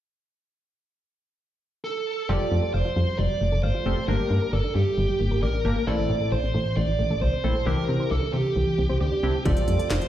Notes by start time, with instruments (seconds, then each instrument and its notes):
1.84 lead electric guitar A4
2.29 fm bass F1, synth arpeggio sound G3, analog polysynth C4 F4 G4 A4, lead electric guitar D5
2.40 synth arpeggio sound G3
2.52 fm bass F2, synth arpeggio sound A3
2.63 synth arpeggio sound A4
2.74 fm bass F1, lead electric guitar C5, synth arpeggio sound F5
2.85 synth arpeggio sound F4
2.96 fm bass F2, synth arpeggio sound G3
3.19 fm bass F1, synth arpeggio sound G3, lead electric guitar D5
3.30 synth arpeggio sound G3
3.41 fm bass F1, synth arpeggio sound A3
3.52 fm bass F1, synth arpeggio sound A4
3.63 fm bass G1, lead electric guitar C5, synth arpeggio sound F5
3.75 synth arpeggio sound F4
3.86 fm bass F1, synth arpeggio sound A3, analog polysynth C4 F4 G4 A4
3.97 synth arpeggio sound A3
4.08 fm bass G1, synth arpeggio sound G3, analog polysynth A#3 D4 G4 A#4, lead electric guitar A#4
4.19 synth arpeggio sound G3
4.31 fm bass G2, synth arpeggio sound A#3
4.42 synth arpeggio sound A#4
4.53 fm bass G1, lead electric guitar A4, synth arpeggio sound D5
4.64 synth arpeggio sound D4
4.75 fm bass G2, synth arpeggio sound G3, lead electric guitar G4
4.98 fm bass G1, synth arpeggio sound G3
5.09 synth arpeggio sound G3
5.20 fm bass G1, synth arpeggio sound A#3
5.31 fm bass G1, synth arpeggio sound A#4
5.43 fm bass A1, lead electric guitar A#4, synth arpeggio sound D5
5.54 synth arpeggio sound D4
5.65 fm bass G1, analog polysynth A#3 D4 G4 A#4, synth arpeggio sound A#3
5.76 synth arpeggio sound A#3
5.87 fm bass A1, synth arpeggio sound E3, analog polysynth A3 C4 E4 A4, lead electric guitar D5
5.98 synth arpeggio sound E3
6.10 fm bass A2, synth arpeggio sound A3
6.21 synth arpeggio sound A4
6.32 fm bass A1, lead electric guitar C5, synth arpeggio sound C5
6.43 synth arpeggio sound C4
6.54 fm bass A2, synth arpeggio sound E3
6.77 fm bass A1, synth arpeggio sound E3, lead electric guitar D5
6.88 synth arpeggio sound E3
6.99 fm bass A1, synth arpeggio sound A3
7.10 fm bass A1, synth arpeggio sound A4
7.21 fm bass C2, lead electric guitar C5, synth arpeggio sound C5
7.33 synth arpeggio sound C4
7.44 fm bass A#1, synth arpeggio sound A3, analog polysynth A3 C4 E4 A4
7.55 synth arpeggio sound A3
7.66 fm bass C2, synth arpeggio sound E3, analog polysynth C4 D4 E4 G4, lead electric guitar A#4
7.78 synth arpeggio sound E3
7.89 fm bass C3, synth arpeggio sound C4
8.00 synth arpeggio sound C5
8.11 fm bass C2, lead electric guitar A4, synth arpeggio sound D5
8.22 synth arpeggio sound D4
8.33 fm bass C3, synth arpeggio sound E3, lead electric guitar G4
8.56 fm bass C2, synth arpeggio sound E3
8.67 synth arpeggio sound E3
8.78 fm bass C2, synth arpeggio sound C4
8.89 fm bass C2, synth arpeggio sound C5
9.01 fm bass D2, lead electric guitar G4, synth arpeggio sound D5
9.12 synth arpeggio sound D4
9.23 fm bass C2, synth arpeggio sound C4, analog polysynth C4 D4 E4 G4
9.34 synth arpeggio sound C4
9.45 fm bass F1, synth arpeggio sound G3, analog polysynth C4 F4 G4 A4, lead electric guitar D5, kick, closed hi-hat
9.57 synth arpeggio sound G3, closed hi-hat
9.68 fm bass F2, synth arpeggio sound A3, closed hi-hat
9.79 synth arpeggio sound A4, closed hi-hat
9.90 fm bass F1, lead electric guitar C5, synth arpeggio sound F5, snare, closed hi-hat
10.01 synth arpeggio sound F4, closed hi-hat